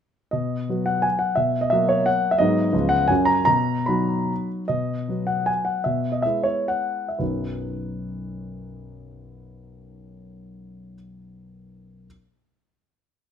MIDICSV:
0, 0, Header, 1, 2, 480
1, 0, Start_track
1, 0, Key_signature, 5, "major"
1, 0, Tempo, 356718
1, 448, Time_signature, 3, 2, 24, 8
1, 1408, Tempo, 342075
1, 4288, Tempo, 397351
1, 7168, Tempo, 376412
1, 8128, Tempo, 478469
1, 10048, Tempo, 458365
1, 11968, Tempo, 433526
1, 15658, End_track
2, 0, Start_track
2, 0, Title_t, "Grand piano"
2, 0, Program_c, 0, 0
2, 420, Note_on_c, 0, 75, 61
2, 441, Note_on_c, 0, 47, 45
2, 725, Control_c, 0, 64, 127
2, 916, Note_off_c, 0, 47, 0
2, 933, Note_on_c, 0, 54, 34
2, 936, Note_on_c, 0, 59, 33
2, 942, Note_on_c, 0, 66, 39
2, 1153, Note_on_c, 0, 78, 66
2, 1163, Note_off_c, 0, 75, 0
2, 1375, Note_on_c, 0, 80, 73
2, 1396, Note_off_c, 0, 78, 0
2, 1426, Control_c, 0, 64, 0
2, 1606, Note_on_c, 0, 78, 62
2, 1622, Note_off_c, 0, 80, 0
2, 1807, Note_off_c, 0, 54, 0
2, 1809, Note_off_c, 0, 59, 0
2, 1812, Note_off_c, 0, 66, 0
2, 1841, Note_on_c, 0, 76, 68
2, 1848, Note_off_c, 0, 78, 0
2, 1861, Note_on_c, 0, 47, 45
2, 2094, Control_c, 0, 64, 127
2, 2201, Note_on_c, 0, 75, 66
2, 2211, Note_off_c, 0, 76, 0
2, 2326, Note_on_c, 0, 76, 73
2, 2335, Note_off_c, 0, 47, 0
2, 2340, Note_off_c, 0, 75, 0
2, 2355, Note_on_c, 0, 54, 38
2, 2361, Note_on_c, 0, 66, 47
2, 2365, Note_on_c, 0, 58, 41
2, 2588, Note_on_c, 0, 73, 70
2, 2592, Note_off_c, 0, 76, 0
2, 2828, Note_on_c, 0, 78, 82
2, 2839, Note_off_c, 0, 73, 0
2, 2864, Control_c, 0, 64, 0
2, 3185, Note_on_c, 0, 76, 71
2, 3189, Note_off_c, 0, 78, 0
2, 3257, Note_off_c, 0, 54, 0
2, 3260, Note_off_c, 0, 66, 0
2, 3263, Note_off_c, 0, 58, 0
2, 3286, Note_on_c, 0, 75, 86
2, 3303, Note_on_c, 0, 54, 42
2, 3305, Note_off_c, 0, 76, 0
2, 3307, Note_on_c, 0, 44, 58
2, 3310, Note_on_c, 0, 59, 39
2, 3321, Note_on_c, 0, 68, 43
2, 3529, Control_c, 0, 64, 127
2, 3727, Note_off_c, 0, 54, 0
2, 3730, Note_off_c, 0, 59, 0
2, 3737, Note_off_c, 0, 68, 0
2, 3762, Note_off_c, 0, 44, 0
2, 3765, Note_on_c, 0, 53, 36
2, 3766, Note_on_c, 0, 37, 59
2, 3778, Note_on_c, 0, 59, 38
2, 3779, Note_on_c, 0, 68, 38
2, 3794, Control_c, 0, 64, 0
2, 3993, Note_on_c, 0, 78, 85
2, 4018, Note_off_c, 0, 75, 0
2, 4031, Control_c, 0, 64, 127
2, 4229, Note_off_c, 0, 53, 0
2, 4236, Note_off_c, 0, 59, 0
2, 4237, Note_off_c, 0, 68, 0
2, 4256, Note_on_c, 0, 80, 78
2, 4266, Note_off_c, 0, 37, 0
2, 4269, Note_off_c, 0, 78, 0
2, 4269, Note_on_c, 0, 54, 38
2, 4277, Note_on_c, 0, 42, 56
2, 4283, Note_on_c, 0, 61, 42
2, 4294, Note_on_c, 0, 66, 41
2, 4304, Control_c, 0, 64, 0
2, 4476, Note_on_c, 0, 82, 84
2, 4495, Control_c, 0, 64, 127
2, 4499, Note_off_c, 0, 80, 0
2, 4692, Note_off_c, 0, 54, 0
2, 4695, Note_off_c, 0, 82, 0
2, 4698, Note_off_c, 0, 61, 0
2, 4704, Note_off_c, 0, 66, 0
2, 4714, Note_on_c, 0, 82, 91
2, 4728, Note_off_c, 0, 42, 0
2, 4736, Note_on_c, 0, 47, 53
2, 4765, Control_c, 0, 64, 0
2, 5044, Control_c, 0, 64, 127
2, 5210, Note_on_c, 0, 83, 61
2, 5225, Note_off_c, 0, 47, 0
2, 5229, Note_off_c, 0, 82, 0
2, 5232, Note_on_c, 0, 54, 42
2, 5234, Note_on_c, 0, 63, 43
2, 5239, Note_on_c, 0, 66, 47
2, 5761, Control_c, 0, 64, 0
2, 5959, Note_off_c, 0, 83, 0
2, 6153, Note_off_c, 0, 54, 0
2, 6153, Note_off_c, 0, 63, 0
2, 6156, Note_off_c, 0, 66, 0
2, 6196, Note_on_c, 0, 75, 69
2, 6212, Note_on_c, 0, 47, 44
2, 6487, Control_c, 0, 64, 127
2, 6677, Note_off_c, 0, 47, 0
2, 6686, Note_on_c, 0, 54, 31
2, 6691, Note_on_c, 0, 59, 30
2, 6693, Note_on_c, 0, 66, 33
2, 6907, Note_on_c, 0, 78, 63
2, 6929, Note_off_c, 0, 75, 0
2, 7142, Note_on_c, 0, 80, 68
2, 7153, Note_off_c, 0, 78, 0
2, 7183, Control_c, 0, 64, 0
2, 7378, Note_on_c, 0, 78, 60
2, 7389, Note_off_c, 0, 80, 0
2, 7580, Note_off_c, 0, 54, 0
2, 7583, Note_off_c, 0, 59, 0
2, 7583, Note_off_c, 0, 66, 0
2, 7620, Note_off_c, 0, 78, 0
2, 7624, Note_on_c, 0, 76, 62
2, 7646, Note_on_c, 0, 47, 43
2, 7858, Control_c, 0, 64, 127
2, 7980, Note_on_c, 0, 75, 56
2, 7990, Note_off_c, 0, 76, 0
2, 8114, Note_on_c, 0, 76, 66
2, 8119, Note_off_c, 0, 47, 0
2, 8120, Note_off_c, 0, 75, 0
2, 8139, Control_c, 0, 64, 0
2, 8140, Note_on_c, 0, 56, 30
2, 8142, Note_on_c, 0, 59, 31
2, 8142, Note_on_c, 0, 64, 33
2, 8328, Note_on_c, 0, 73, 60
2, 8342, Note_off_c, 0, 76, 0
2, 8576, Note_off_c, 0, 73, 0
2, 8576, Note_on_c, 0, 78, 66
2, 8976, Note_off_c, 0, 78, 0
2, 8980, Note_on_c, 0, 76, 40
2, 9066, Note_off_c, 0, 56, 0
2, 9067, Note_off_c, 0, 59, 0
2, 9067, Note_off_c, 0, 64, 0
2, 9081, Note_on_c, 0, 71, 36
2, 9086, Note_on_c, 0, 35, 33
2, 9089, Note_on_c, 0, 42, 27
2, 9090, Note_on_c, 0, 59, 26
2, 9093, Note_on_c, 0, 63, 26
2, 9095, Note_on_c, 0, 54, 27
2, 9098, Note_on_c, 0, 66, 27
2, 9099, Note_off_c, 0, 76, 0
2, 9316, Control_c, 0, 64, 127
2, 13018, Note_off_c, 0, 71, 0
2, 13023, Note_off_c, 0, 35, 0
2, 13027, Note_off_c, 0, 42, 0
2, 13028, Note_off_c, 0, 59, 0
2, 13031, Note_off_c, 0, 63, 0
2, 13033, Note_off_c, 0, 54, 0
2, 13037, Note_off_c, 0, 66, 0
2, 14274, Control_c, 0, 64, 0
2, 15658, End_track
0, 0, End_of_file